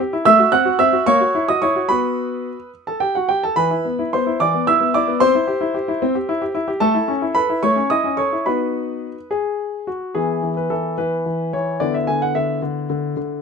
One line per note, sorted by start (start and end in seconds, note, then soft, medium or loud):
0.00 0.14 G4 medium
0.13 0.26 E4 medium
0.25 0.39 A3 medium
0.25 0.51 E5 medium
0.25 0.53 E6 loud
0.39 0.54 F#4 medium
0.52 0.67 C4 medium
0.52 0.78 F#5 medium
0.52 0.77 F#6 loud
0.65 0.80 F#4 medium
0.79 0.94 C4 medium
0.79 1.05 E5 medium
0.79 1.04 E6 loud
0.93 1.07 F#4 medium
1.06 1.21 A#3 medium
1.06 1.46 C#5 medium
1.06 1.44 C#6 loud
1.21 1.35 F#4 medium
1.35 1.49 E4 medium
1.49 1.63 F#4 medium
1.49 1.62 D#5 medium
1.49 1.62 D#6 medium
1.62 1.77 E4 medium
1.62 1.88 C#5 medium
1.62 1.90 C#6 medium
1.76 1.87 F#4 medium
1.89 2.48 B3 medium
1.89 2.56 F#4 medium
1.89 2.69 B4 medium
1.89 2.68 B5 medium
2.87 3.00 A4 medium
2.87 3.01 A5 medium
3.00 3.14 G4 medium
3.00 3.14 G5 medium
3.15 3.29 F#4 soft
3.15 3.29 F#5 medium
3.29 3.42 G4 medium
3.29 3.42 G5 medium
3.43 3.57 A4 medium
3.43 3.57 A5 medium
3.56 3.70 E3 medium
3.56 4.09 B4 medium
3.56 4.12 B5 medium
3.71 3.85 E4 soft
3.85 3.99 B3 medium
3.99 4.13 E4 soft
4.13 4.27 B3 medium
4.13 4.39 C5 medium
4.13 4.38 C6 medium
4.27 4.41 E4 medium
4.40 4.54 E3 medium
4.40 4.66 D5 medium
4.40 4.67 D6 medium
4.54 4.68 B3 medium
4.67 4.82 E4 medium
4.67 4.93 E5 medium
4.67 4.94 E6 loud
4.80 4.95 B3 medium
4.94 5.09 E4 medium
4.94 5.20 D5 medium
4.94 5.21 D6 medium
5.08 5.21 B3 medium
5.20 5.34 C4 medium
5.20 6.51 C5 medium
5.20 6.55 C6 loud
5.35 5.49 E4 medium
5.47 5.62 G4 medium
5.61 5.75 E4 medium
5.74 5.89 G4 medium
5.88 6.03 E4 medium
6.02 6.15 C4 medium
6.15 6.29 G4 medium
6.29 6.43 E4 medium
6.42 6.56 G4 medium
6.55 6.69 E4 medium
6.68 6.81 G4 medium
6.80 6.94 A3 medium
6.80 7.32 A4 medium
6.80 7.13 A5 loud
6.95 7.09 E4 medium
7.08 7.23 C#4 medium
7.22 7.36 E4 medium
7.35 7.50 A4 medium
7.35 7.61 B4 medium
7.35 7.63 B5 medium
7.50 7.64 E4 medium
7.63 7.77 A3 medium
7.63 7.89 C#5 medium
7.63 7.88 C#6 loud
7.76 7.91 C#4 medium
7.90 8.05 E4 medium
7.90 8.17 D#5 medium
7.90 8.15 D#6 medium
8.04 8.19 C#4 medium
8.17 8.33 A4 soft
8.17 8.45 C#5 medium
8.17 8.46 C#6 medium
8.32 8.47 E4 soft
8.46 9.06 B3 soft
8.46 9.14 D#4 soft
8.46 9.14 F#4 soft
8.46 9.28 B4 medium
8.46 9.27 B5 medium
9.31 9.88 G#4 medium
9.87 10.16 F#4 soft
10.15 10.41 E3 soft
10.15 11.76 B3 soft
10.15 11.76 E4 soft
10.15 10.53 G#4 medium
10.43 10.69 E3 soft
10.57 10.71 B4 medium
10.70 10.97 E3 soft
10.70 10.96 A4 medium
10.98 11.24 E3 soft
10.98 11.53 B4 medium
11.26 11.52 E3 soft
11.53 11.80 E3 soft
11.53 11.81 C#5 medium
11.80 12.07 D3 medium
11.80 13.39 B3 soft
11.80 13.39 E4 soft
11.80 11.94 D5 medium
11.94 12.08 E5 medium
12.07 12.34 D3 soft
12.07 12.21 G#5 medium
12.22 12.36 F#5 medium
12.35 12.61 D3 soft
12.35 12.60 E5 medium
12.62 12.88 D3 medium
12.90 13.15 D3 medium
13.17 13.42 D3 soft